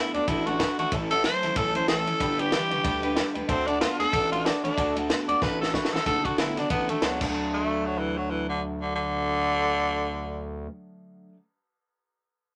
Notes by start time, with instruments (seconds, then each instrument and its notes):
Already playing: clean electric guitar D3 B3, steel-string acoustic guitar A3 D4 F#4, tenor saxophone E4
0.00 steel-string acoustic guitar A4
0.14 analog synth bass D2, clean electric guitar D3 B3, tenor saxophone D4, steel-string acoustic guitar D4 F#4 A4, upright piano D5 F#5 A5, ride
0.27 analog synth bass A1, steel-string acoustic guitar D3 A3 D4 F#4 A4, clean electric guitar D3 A3, tenor saxophone E4, upright piano D5 F#5 A5, kick, ride
0.46 clean electric guitar D3 A3, steel-string acoustic guitar D4 F#4 A4, tenor saxophone F#4, upright piano D5 F#5 A5, ride
0.59 clean electric guitar D3 A3, steel-string acoustic guitar A3 D4 F#4 A4, upright piano D5 F#5 B5, kick, snare, ride
0.78 analog synth bass A1, clean electric guitar D3 A3, steel-string acoustic guitar D4 F#4 A4, tenor saxophone F#4, upright piano D5 F#5 A5, ride
0.92 analog synth bass A1, steel-string acoustic guitar A2 E3 A3 C#4 E4 A4, clean electric guitar A2 E3, upright piano C#5 E5 A5, kick, ride
1.10 clean electric guitar A2 E3, steel-string acoustic guitar A3 C#4 E4 A4, tenor saxophone A4, upright piano C#5 E5 F#5, ride
1.23 clean electric guitar A2 F#3, steel-string acoustic guitar A3 C#4 E4 A4, tenor saxophone C5, upright piano C#5 E5 A5, snare, ride
1.42 analog synth bass A1, clean electric guitar A2 F#3, steel-string acoustic guitar A3 C#4 E4 A4, upright piano C#5 E5 A5, snare, ride
1.56 analog synth bass B1, steel-string acoustic guitar A2 E3 A3 C#4 E4 A4, clean electric guitar A2 E3, tenor saxophone A4, upright piano C#5 E5 A5, kick, ride
1.74 analog synth bass B1, clean electric guitar A2 E3, steel-string acoustic guitar A3 C#4 E4 A4, tenor saxophone C5, upright piano C#5 E5 A5, ride
1.87 analog synth bass A1, clean electric guitar A2 E3, steel-string acoustic guitar A3 E4, tenor saxophone A4, upright piano C#5 E5 G5, snare, ride
2.06 analog synth bass A1, clean electric guitar A2 E3, steel-string acoustic guitar A3 C#4 E4 A4, upright piano C#5 E5 A5, ride
2.20 analog synth bass G1, clean electric guitar G2 D3, steel-string acoustic guitar G3 D4 G4 B4, upright piano D5 G5 B5, kick, ride
2.38 clean electric guitar G2 D3, steel-string acoustic guitar D4 G4 B4, tenor saxophone G4, upright piano D5 G5 B5, ride
2.52 clean electric guitar G2 E3, steel-string acoustic guitar G3 D4 G4 B4, upright piano D5 B5, snare, ride
2.70 analog synth bass G1, clean electric guitar G2 E3, steel-string acoustic guitar D4 G4 B4, upright piano D5 G5 C#6, ride
2.83 analog synth bass D2, clean electric guitar G2 D3, steel-string acoustic guitar G3 D4 G4 B4, upright piano D5 G5 B5, kick, ride
3.02 clean electric guitar G2 D3, steel-string acoustic guitar D4 G4 B4, upright piano D5 G5 B5, ride
3.15 clean electric guitar G2 D3, steel-string acoustic guitar G3 D4 G4 B4, upright piano D5 G5 B5, snare, ride
3.34 analog synth bass D2, clean electric guitar G2 D3, steel-string acoustic guitar D4 G4 B4, upright piano D5 G5 B5, ride
3.48 analog synth bass D2, steel-string acoustic guitar D3 A3 D4 F#4 A4, clean electric guitar D3 A3, tenor saxophone C4, upright piano D5 F#5 A5, kick, ride
3.67 clean electric guitar D3 A3, tenor saxophone D4, steel-string acoustic guitar D4 F#4 A4, upright piano D5 F#5 A5, ride
3.80 clean electric guitar D3 B3, steel-string acoustic guitar A3 D4 F#4 A4, tenor saxophone F4, upright piano D5 A5, snare, ride
3.99 analog synth bass D2, clean electric guitar D3 B3, steel-string acoustic guitar D4 F#4 A4, tenor saxophone A4, upright piano D5 A5, snare, ride
4.12 analog synth bass A1, clean electric guitar D3 A3, steel-string acoustic guitar D3 A3 D4 F#4 A4, upright piano D5 F#5 A5, kick, ride
4.31 clean electric guitar D3 A3, tenor saxophone F4, steel-string acoustic guitar F#4 A4, upright piano D5 F#5 A5, ride
4.35 steel-string acoustic guitar D4
4.44 clean electric guitar D3 A3, steel-string acoustic guitar A3 D4 F#4, tenor saxophone D4, upright piano D5 F#5 A5, snare, ride
4.48 steel-string acoustic guitar A4
4.63 analog synth bass A1, clean electric guitar D3 A3, tenor saxophone D4, steel-string acoustic guitar D4 F#4 A4, upright piano D5 F#5 B5, ride
4.76 analog synth bass D2, clean electric guitar D3 A3, steel-string acoustic guitar D3 A3 D4 F#4 A4, upright piano D5 F#5 A5, kick, ride
4.95 clean electric guitar D3 A3, steel-string acoustic guitar D4 F#4 A4, upright piano D5 F#5 A5, ride
5.09 clean electric guitar D3 B3, steel-string acoustic guitar A3 D4 F#4 A4, upright piano D5 A5, snare, ride
5.28 analog synth bass D2, clean electric guitar D3 B3, steel-string acoustic guitar D4 F#4 A4, upright piano D5 F#5 A5, tenor saxophone D5, ride
5.41 analog synth bass A1, steel-string acoustic guitar D3 A3 D4 F#4 A4, clean electric guitar D3 A3, tenor saxophone B4, upright piano D5 A5, kick, snare
5.60 clean electric guitar D3 A3, steel-string acoustic guitar D4 F#4 A4, tenor saxophone A4, upright piano D5 F#5 A5, snare
5.73 clean electric guitar D3 A3, steel-string acoustic guitar A3 D4 F#4 A4, tenor saxophone F#4, upright piano D5 F#5 B5, kick, snare
5.85 snare
5.92 analog synth bass A1, clean electric guitar D3 A3, steel-string acoustic guitar D4 F#4 A4, tenor saxophone A4, upright piano D5 F#5 A5, snare
6.06 analog synth bass F#1, steel-string acoustic guitar D3 A3 D4 F#4 A4, clean electric guitar D3 A3, tenor saxophone A4, upright piano D5 F#5 A5, kick, snare, ride
6.25 analog synth bass F#1, clean electric guitar D3 A3, steel-string acoustic guitar D4 F#4 A4, tenor saxophone F#4, upright piano D5 F#5 A5, kick, ride
6.38 analog synth bass G1, steel-string acoustic guitar D3 A3 D4 F#4 A4, clean electric guitar D3 B3, tenor saxophone E4, upright piano D5 F#5 B5, snare, ride
6.56 analog synth bass G1, clean electric guitar D3 B3, tenor saxophone D4, steel-string acoustic guitar D4 F#4 A4, upright piano D5 F#5 B5, snare, ride
6.70 analog synth bass A1, clean electric guitar D3 A3, steel-string acoustic guitar A3 D4 F#4 A4, tenor saxophone B3, upright piano D5 A5, kick, ride
6.88 analog synth bass A1, clean electric guitar D3 A3, tenor saxophone A3, steel-string acoustic guitar D4 F#4 A4, upright piano D5 F#5 A5, ride
7.01 analog synth bass C#2, steel-string acoustic guitar D3 A3 D4 F#4 A4, clean electric guitar D3 B3, tenor saxophone F#3, upright piano D5 F#5 A5, snare, ride
7.18 analog synth bass D2, steel-string acoustic guitar D3, clean electric guitar D3, upright piano D5 F#5, kick, crash
7.22 clean electric guitar F#3 A3 D4, steel-string acoustic guitar A3 D4, upright piano A5
7.28 steel-string acoustic guitar F#4 A4
7.53 tenor saxophone A3
7.86 tenor saxophone F#3
7.99 tenor saxophone E3
8.17 tenor saxophone F#3
8.30 tenor saxophone E3
8.49 tenor saxophone D3
8.81 tenor saxophone D3
8.95 tenor saxophone D3